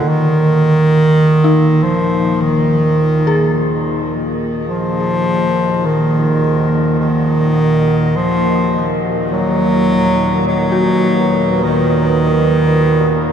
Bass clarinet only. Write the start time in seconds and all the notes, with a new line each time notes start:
Already playing: D3
0.09 D#3
1.83 F3
2.41 D#3
4.69 F3
5.86 D#3
7.00 D#3
8.16 F3
9.32 F#3
10.47 F#3
11.63 D#3